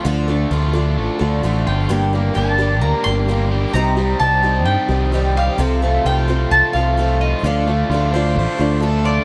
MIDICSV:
0, 0, Header, 1, 7, 480
1, 0, Start_track
1, 0, Tempo, 461538
1, 55, Time_signature, 4, 2, 24, 8
1, 9611, End_track
2, 0, Start_track
2, 0, Title_t, "Mandolin"
2, 0, Program_c, 0, 25
2, 1736, Note_on_c, 0, 79, 85
2, 2413, Note_off_c, 0, 79, 0
2, 2444, Note_on_c, 0, 81, 80
2, 2895, Note_off_c, 0, 81, 0
2, 2927, Note_on_c, 0, 82, 84
2, 3156, Note_off_c, 0, 82, 0
2, 3160, Note_on_c, 0, 84, 98
2, 3613, Note_off_c, 0, 84, 0
2, 3884, Note_on_c, 0, 82, 94
2, 4359, Note_off_c, 0, 82, 0
2, 4363, Note_on_c, 0, 81, 93
2, 4814, Note_off_c, 0, 81, 0
2, 4841, Note_on_c, 0, 79, 98
2, 5525, Note_off_c, 0, 79, 0
2, 5587, Note_on_c, 0, 77, 95
2, 6297, Note_off_c, 0, 77, 0
2, 6302, Note_on_c, 0, 79, 96
2, 6744, Note_off_c, 0, 79, 0
2, 6774, Note_on_c, 0, 81, 101
2, 6998, Note_off_c, 0, 81, 0
2, 7002, Note_on_c, 0, 77, 86
2, 7498, Note_on_c, 0, 75, 82
2, 7502, Note_off_c, 0, 77, 0
2, 7742, Note_off_c, 0, 75, 0
2, 7756, Note_on_c, 0, 77, 74
2, 9143, Note_off_c, 0, 77, 0
2, 9415, Note_on_c, 0, 74, 87
2, 9611, Note_off_c, 0, 74, 0
2, 9611, End_track
3, 0, Start_track
3, 0, Title_t, "Tonewheel organ"
3, 0, Program_c, 1, 16
3, 1973, Note_on_c, 1, 86, 72
3, 1974, Note_on_c, 1, 79, 57
3, 1978, Note_on_c, 1, 70, 61
3, 3873, Note_off_c, 1, 86, 0
3, 3876, Note_off_c, 1, 70, 0
3, 3909, Note_on_c, 1, 72, 63
3, 3914, Note_on_c, 1, 87, 70
3, 5774, Note_off_c, 1, 79, 0
3, 5801, Note_off_c, 1, 72, 0
3, 5804, Note_off_c, 1, 87, 0
3, 5831, Note_on_c, 1, 77, 59
3, 5832, Note_on_c, 1, 69, 66
3, 5833, Note_on_c, 1, 84, 74
3, 7724, Note_off_c, 1, 84, 0
3, 7743, Note_on_c, 1, 86, 72
3, 9611, Note_off_c, 1, 69, 0
3, 9611, Note_off_c, 1, 77, 0
3, 9611, Note_off_c, 1, 86, 0
3, 9611, End_track
4, 0, Start_track
4, 0, Title_t, "Harmonica"
4, 0, Program_c, 2, 22
4, 8458, Note_on_c, 2, 72, 75
4, 8688, Note_off_c, 2, 72, 0
4, 8716, Note_on_c, 2, 72, 81
4, 9183, Note_on_c, 2, 69, 78
4, 9198, Note_off_c, 2, 72, 0
4, 9528, Note_off_c, 2, 69, 0
4, 9611, End_track
5, 0, Start_track
5, 0, Title_t, "Twelve-string acoustic guitar"
5, 0, Program_c, 3, 25
5, 48, Note_on_c, 3, 50, 81
5, 55, Note_on_c, 3, 53, 86
5, 60, Note_on_c, 3, 62, 81
5, 63, Note_on_c, 3, 65, 79
5, 66, Note_on_c, 3, 69, 97
5, 276, Note_off_c, 3, 69, 0
5, 288, Note_off_c, 3, 65, 0
5, 289, Note_on_c, 3, 69, 51
5, 292, Note_off_c, 3, 50, 0
5, 295, Note_off_c, 3, 53, 0
5, 297, Note_off_c, 3, 62, 0
5, 301, Note_on_c, 3, 65, 45
5, 311, Note_on_c, 3, 62, 49
5, 520, Note_off_c, 3, 62, 0
5, 528, Note_on_c, 3, 53, 61
5, 532, Note_off_c, 3, 69, 0
5, 532, Note_on_c, 3, 62, 60
5, 538, Note_off_c, 3, 65, 0
5, 549, Note_on_c, 3, 65, 64
5, 556, Note_on_c, 3, 69, 58
5, 751, Note_off_c, 3, 69, 0
5, 764, Note_on_c, 3, 69, 59
5, 766, Note_off_c, 3, 65, 0
5, 771, Note_off_c, 3, 53, 0
5, 773, Note_off_c, 3, 62, 0
5, 778, Note_on_c, 3, 65, 52
5, 789, Note_on_c, 3, 62, 50
5, 1227, Note_off_c, 3, 69, 0
5, 1239, Note_on_c, 3, 69, 47
5, 1245, Note_off_c, 3, 65, 0
5, 1255, Note_off_c, 3, 62, 0
5, 1257, Note_on_c, 3, 65, 49
5, 1267, Note_on_c, 3, 62, 47
5, 1486, Note_off_c, 3, 62, 0
5, 1487, Note_off_c, 3, 69, 0
5, 1490, Note_on_c, 3, 53, 58
5, 1496, Note_off_c, 3, 65, 0
5, 1498, Note_on_c, 3, 62, 60
5, 1507, Note_on_c, 3, 65, 67
5, 1518, Note_on_c, 3, 69, 67
5, 1965, Note_on_c, 3, 43, 77
5, 1970, Note_off_c, 3, 62, 0
5, 1970, Note_on_c, 3, 50, 68
5, 1972, Note_off_c, 3, 53, 0
5, 1978, Note_off_c, 3, 65, 0
5, 1978, Note_on_c, 3, 55, 82
5, 1980, Note_on_c, 3, 58, 82
5, 1982, Note_off_c, 3, 69, 0
5, 1982, Note_on_c, 3, 62, 79
5, 1986, Note_on_c, 3, 67, 85
5, 2201, Note_off_c, 3, 67, 0
5, 2205, Note_off_c, 3, 62, 0
5, 2209, Note_off_c, 3, 43, 0
5, 2212, Note_off_c, 3, 50, 0
5, 2214, Note_on_c, 3, 67, 46
5, 2216, Note_off_c, 3, 55, 0
5, 2217, Note_off_c, 3, 58, 0
5, 2217, Note_on_c, 3, 62, 43
5, 2235, Note_on_c, 3, 58, 44
5, 2239, Note_on_c, 3, 55, 34
5, 2423, Note_off_c, 3, 55, 0
5, 2431, Note_off_c, 3, 58, 0
5, 2435, Note_on_c, 3, 55, 54
5, 2443, Note_on_c, 3, 58, 51
5, 2448, Note_off_c, 3, 62, 0
5, 2453, Note_off_c, 3, 67, 0
5, 2460, Note_on_c, 3, 62, 56
5, 2469, Note_on_c, 3, 67, 63
5, 2675, Note_off_c, 3, 67, 0
5, 2684, Note_off_c, 3, 55, 0
5, 2685, Note_off_c, 3, 62, 0
5, 2687, Note_on_c, 3, 67, 51
5, 2688, Note_off_c, 3, 58, 0
5, 2698, Note_on_c, 3, 62, 53
5, 2709, Note_on_c, 3, 58, 53
5, 2718, Note_on_c, 3, 55, 44
5, 3160, Note_off_c, 3, 67, 0
5, 3172, Note_on_c, 3, 67, 43
5, 3175, Note_off_c, 3, 62, 0
5, 3181, Note_off_c, 3, 58, 0
5, 3185, Note_off_c, 3, 55, 0
5, 3187, Note_on_c, 3, 62, 42
5, 3196, Note_on_c, 3, 58, 40
5, 3205, Note_on_c, 3, 55, 41
5, 3402, Note_off_c, 3, 55, 0
5, 3410, Note_off_c, 3, 58, 0
5, 3413, Note_off_c, 3, 67, 0
5, 3414, Note_on_c, 3, 55, 55
5, 3420, Note_off_c, 3, 62, 0
5, 3423, Note_on_c, 3, 58, 59
5, 3440, Note_on_c, 3, 62, 53
5, 3440, Note_on_c, 3, 67, 57
5, 3889, Note_off_c, 3, 55, 0
5, 3896, Note_on_c, 3, 48, 68
5, 3897, Note_off_c, 3, 58, 0
5, 3900, Note_off_c, 3, 67, 0
5, 3901, Note_on_c, 3, 55, 73
5, 3901, Note_on_c, 3, 60, 81
5, 3905, Note_off_c, 3, 62, 0
5, 3909, Note_on_c, 3, 63, 84
5, 3913, Note_on_c, 3, 67, 78
5, 4114, Note_off_c, 3, 67, 0
5, 4126, Note_on_c, 3, 67, 54
5, 4134, Note_off_c, 3, 48, 0
5, 4135, Note_off_c, 3, 63, 0
5, 4137, Note_off_c, 3, 55, 0
5, 4137, Note_off_c, 3, 60, 0
5, 4148, Note_on_c, 3, 63, 38
5, 4162, Note_on_c, 3, 60, 35
5, 4367, Note_on_c, 3, 55, 48
5, 4369, Note_off_c, 3, 67, 0
5, 4372, Note_off_c, 3, 60, 0
5, 4373, Note_off_c, 3, 63, 0
5, 4384, Note_on_c, 3, 60, 54
5, 4386, Note_on_c, 3, 63, 57
5, 4397, Note_on_c, 3, 67, 59
5, 4595, Note_off_c, 3, 67, 0
5, 4607, Note_on_c, 3, 67, 55
5, 4610, Note_off_c, 3, 55, 0
5, 4610, Note_off_c, 3, 63, 0
5, 4618, Note_off_c, 3, 60, 0
5, 4623, Note_on_c, 3, 63, 49
5, 4637, Note_on_c, 3, 60, 40
5, 5066, Note_off_c, 3, 67, 0
5, 5079, Note_on_c, 3, 67, 43
5, 5087, Note_off_c, 3, 63, 0
5, 5099, Note_on_c, 3, 63, 41
5, 5100, Note_off_c, 3, 60, 0
5, 5112, Note_on_c, 3, 60, 38
5, 5325, Note_on_c, 3, 55, 50
5, 5326, Note_off_c, 3, 60, 0
5, 5326, Note_off_c, 3, 67, 0
5, 5331, Note_off_c, 3, 63, 0
5, 5338, Note_on_c, 3, 60, 50
5, 5343, Note_on_c, 3, 63, 60
5, 5357, Note_on_c, 3, 67, 70
5, 5802, Note_off_c, 3, 60, 0
5, 5803, Note_on_c, 3, 48, 71
5, 5809, Note_off_c, 3, 55, 0
5, 5813, Note_on_c, 3, 53, 82
5, 5814, Note_on_c, 3, 60, 86
5, 5816, Note_off_c, 3, 63, 0
5, 5820, Note_on_c, 3, 65, 84
5, 5822, Note_off_c, 3, 67, 0
5, 5827, Note_on_c, 3, 69, 83
5, 6042, Note_off_c, 3, 69, 0
5, 6048, Note_off_c, 3, 48, 0
5, 6053, Note_off_c, 3, 53, 0
5, 6053, Note_off_c, 3, 60, 0
5, 6054, Note_on_c, 3, 69, 52
5, 6056, Note_off_c, 3, 65, 0
5, 6067, Note_on_c, 3, 65, 45
5, 6075, Note_on_c, 3, 60, 41
5, 6290, Note_off_c, 3, 60, 0
5, 6293, Note_off_c, 3, 69, 0
5, 6296, Note_on_c, 3, 53, 46
5, 6300, Note_off_c, 3, 65, 0
5, 6303, Note_on_c, 3, 60, 53
5, 6310, Note_on_c, 3, 65, 57
5, 6321, Note_on_c, 3, 69, 57
5, 6517, Note_off_c, 3, 69, 0
5, 6529, Note_on_c, 3, 69, 55
5, 6532, Note_off_c, 3, 65, 0
5, 6534, Note_off_c, 3, 53, 0
5, 6538, Note_off_c, 3, 60, 0
5, 6545, Note_on_c, 3, 65, 53
5, 6553, Note_on_c, 3, 60, 47
5, 7011, Note_off_c, 3, 69, 0
5, 7019, Note_off_c, 3, 65, 0
5, 7023, Note_off_c, 3, 60, 0
5, 7026, Note_on_c, 3, 69, 49
5, 7036, Note_on_c, 3, 65, 48
5, 7048, Note_on_c, 3, 60, 35
5, 7252, Note_off_c, 3, 60, 0
5, 7252, Note_on_c, 3, 53, 52
5, 7258, Note_off_c, 3, 65, 0
5, 7259, Note_off_c, 3, 69, 0
5, 7265, Note_on_c, 3, 60, 57
5, 7270, Note_on_c, 3, 65, 59
5, 7282, Note_on_c, 3, 69, 54
5, 7733, Note_off_c, 3, 53, 0
5, 7739, Note_off_c, 3, 60, 0
5, 7739, Note_on_c, 3, 50, 73
5, 7741, Note_off_c, 3, 65, 0
5, 7747, Note_off_c, 3, 69, 0
5, 7752, Note_on_c, 3, 53, 80
5, 7756, Note_on_c, 3, 62, 71
5, 7759, Note_on_c, 3, 65, 74
5, 7768, Note_on_c, 3, 69, 75
5, 7966, Note_off_c, 3, 69, 0
5, 7976, Note_off_c, 3, 50, 0
5, 7979, Note_on_c, 3, 69, 43
5, 7982, Note_off_c, 3, 53, 0
5, 7984, Note_off_c, 3, 62, 0
5, 7986, Note_off_c, 3, 65, 0
5, 7997, Note_on_c, 3, 65, 40
5, 8010, Note_on_c, 3, 62, 42
5, 8216, Note_off_c, 3, 69, 0
5, 8225, Note_off_c, 3, 65, 0
5, 8231, Note_on_c, 3, 53, 56
5, 8232, Note_off_c, 3, 62, 0
5, 8244, Note_on_c, 3, 62, 58
5, 8253, Note_on_c, 3, 65, 48
5, 8260, Note_on_c, 3, 69, 56
5, 8449, Note_off_c, 3, 69, 0
5, 8461, Note_on_c, 3, 69, 60
5, 8462, Note_off_c, 3, 53, 0
5, 8466, Note_off_c, 3, 65, 0
5, 8469, Note_off_c, 3, 62, 0
5, 8479, Note_on_c, 3, 65, 54
5, 8488, Note_on_c, 3, 62, 51
5, 8912, Note_off_c, 3, 69, 0
5, 8924, Note_on_c, 3, 69, 49
5, 8929, Note_off_c, 3, 65, 0
5, 8941, Note_on_c, 3, 65, 48
5, 8943, Note_off_c, 3, 62, 0
5, 8956, Note_on_c, 3, 62, 51
5, 9154, Note_on_c, 3, 53, 53
5, 9160, Note_off_c, 3, 62, 0
5, 9166, Note_off_c, 3, 65, 0
5, 9169, Note_off_c, 3, 69, 0
5, 9173, Note_on_c, 3, 62, 58
5, 9178, Note_on_c, 3, 65, 61
5, 9182, Note_on_c, 3, 69, 70
5, 9611, Note_off_c, 3, 53, 0
5, 9611, Note_off_c, 3, 62, 0
5, 9611, Note_off_c, 3, 65, 0
5, 9611, Note_off_c, 3, 69, 0
5, 9611, End_track
6, 0, Start_track
6, 0, Title_t, "Overdriven electric guitar"
6, 0, Program_c, 4, 29
6, 46, Note_on_c, 4, 50, 65
6, 298, Note_on_c, 4, 57, 67
6, 541, Note_on_c, 4, 65, 64
6, 780, Note_on_c, 4, 62, 68
6, 1003, Note_off_c, 4, 57, 0
6, 1015, Note_on_c, 4, 57, 65
6, 1241, Note_off_c, 4, 50, 0
6, 1254, Note_on_c, 4, 50, 61
6, 1489, Note_off_c, 4, 57, 0
6, 1501, Note_on_c, 4, 57, 59
6, 1719, Note_off_c, 4, 65, 0
6, 1731, Note_on_c, 4, 65, 74
6, 1972, Note_off_c, 4, 65, 0
6, 1974, Note_off_c, 4, 50, 0
6, 1977, Note_off_c, 4, 57, 0
6, 1977, Note_off_c, 4, 62, 0
6, 1983, Note_on_c, 4, 43, 66
6, 2225, Note_on_c, 4, 58, 67
6, 2462, Note_on_c, 4, 67, 71
6, 2703, Note_on_c, 4, 62, 63
6, 2930, Note_off_c, 4, 58, 0
6, 2942, Note_on_c, 4, 58, 73
6, 3178, Note_off_c, 4, 43, 0
6, 3182, Note_on_c, 4, 55, 52
6, 3400, Note_off_c, 4, 58, 0
6, 3412, Note_on_c, 4, 58, 65
6, 3639, Note_off_c, 4, 67, 0
6, 3651, Note_on_c, 4, 67, 72
6, 3887, Note_on_c, 4, 48, 59
6, 3892, Note_off_c, 4, 67, 0
6, 3893, Note_off_c, 4, 58, 0
6, 3897, Note_off_c, 4, 55, 0
6, 3897, Note_off_c, 4, 62, 0
6, 4130, Note_on_c, 4, 55, 70
6, 4362, Note_on_c, 4, 67, 69
6, 4598, Note_on_c, 4, 60, 73
6, 4829, Note_off_c, 4, 55, 0
6, 4842, Note_on_c, 4, 55, 72
6, 5090, Note_off_c, 4, 48, 0
6, 5092, Note_on_c, 4, 51, 61
6, 5328, Note_off_c, 4, 55, 0
6, 5340, Note_on_c, 4, 55, 60
6, 5567, Note_off_c, 4, 67, 0
6, 5582, Note_on_c, 4, 67, 65
6, 5805, Note_off_c, 4, 60, 0
6, 5812, Note_off_c, 4, 51, 0
6, 5816, Note_off_c, 4, 55, 0
6, 5817, Note_off_c, 4, 67, 0
6, 5822, Note_on_c, 4, 48, 63
6, 6068, Note_on_c, 4, 57, 70
6, 6304, Note_on_c, 4, 65, 70
6, 6550, Note_on_c, 4, 60, 62
6, 6786, Note_off_c, 4, 57, 0
6, 6799, Note_on_c, 4, 57, 70
6, 7017, Note_off_c, 4, 48, 0
6, 7028, Note_on_c, 4, 53, 56
6, 7255, Note_off_c, 4, 57, 0
6, 7268, Note_on_c, 4, 57, 66
6, 7488, Note_off_c, 4, 65, 0
6, 7501, Note_on_c, 4, 65, 65
6, 7737, Note_off_c, 4, 65, 0
6, 7740, Note_off_c, 4, 53, 0
6, 7740, Note_off_c, 4, 57, 0
6, 7741, Note_off_c, 4, 60, 0
6, 7748, Note_on_c, 4, 50, 64
6, 7976, Note_on_c, 4, 57, 73
6, 8213, Note_on_c, 4, 65, 67
6, 8450, Note_on_c, 4, 62, 72
6, 8671, Note_off_c, 4, 57, 0
6, 8683, Note_on_c, 4, 57, 78
6, 8918, Note_off_c, 4, 50, 0
6, 8931, Note_on_c, 4, 50, 51
6, 9161, Note_off_c, 4, 57, 0
6, 9174, Note_on_c, 4, 57, 65
6, 9392, Note_off_c, 4, 65, 0
6, 9405, Note_on_c, 4, 65, 70
6, 9611, Note_off_c, 4, 50, 0
6, 9611, Note_off_c, 4, 57, 0
6, 9611, Note_off_c, 4, 62, 0
6, 9611, Note_off_c, 4, 65, 0
6, 9611, End_track
7, 0, Start_track
7, 0, Title_t, "Picked electric bass"
7, 0, Program_c, 5, 34
7, 53, Note_on_c, 5, 38, 94
7, 463, Note_off_c, 5, 38, 0
7, 529, Note_on_c, 5, 38, 80
7, 1019, Note_off_c, 5, 38, 0
7, 1019, Note_on_c, 5, 33, 90
7, 1119, Note_off_c, 5, 33, 0
7, 1258, Note_on_c, 5, 38, 78
7, 1461, Note_off_c, 5, 38, 0
7, 1493, Note_on_c, 5, 33, 83
7, 1709, Note_off_c, 5, 33, 0
7, 1733, Note_on_c, 5, 31, 78
7, 1949, Note_off_c, 5, 31, 0
7, 1977, Note_on_c, 5, 31, 85
7, 2385, Note_off_c, 5, 31, 0
7, 2458, Note_on_c, 5, 31, 81
7, 2944, Note_off_c, 5, 31, 0
7, 2944, Note_on_c, 5, 38, 90
7, 3042, Note_off_c, 5, 38, 0
7, 3183, Note_on_c, 5, 31, 77
7, 3792, Note_off_c, 5, 31, 0
7, 3889, Note_on_c, 5, 36, 91
7, 4300, Note_off_c, 5, 36, 0
7, 4373, Note_on_c, 5, 36, 88
7, 4845, Note_off_c, 5, 36, 0
7, 4845, Note_on_c, 5, 43, 91
7, 4950, Note_off_c, 5, 43, 0
7, 5085, Note_on_c, 5, 36, 82
7, 5702, Note_off_c, 5, 36, 0
7, 5809, Note_on_c, 5, 36, 98
7, 6219, Note_off_c, 5, 36, 0
7, 6293, Note_on_c, 5, 36, 82
7, 6702, Note_off_c, 5, 36, 0
7, 6774, Note_on_c, 5, 36, 99
7, 6875, Note_off_c, 5, 36, 0
7, 7014, Note_on_c, 5, 36, 78
7, 7627, Note_off_c, 5, 36, 0
7, 7730, Note_on_c, 5, 38, 88
7, 8141, Note_off_c, 5, 38, 0
7, 8213, Note_on_c, 5, 38, 82
7, 8691, Note_on_c, 5, 33, 101
7, 8707, Note_off_c, 5, 38, 0
7, 8794, Note_off_c, 5, 33, 0
7, 8938, Note_on_c, 5, 38, 77
7, 9550, Note_off_c, 5, 38, 0
7, 9611, End_track
0, 0, End_of_file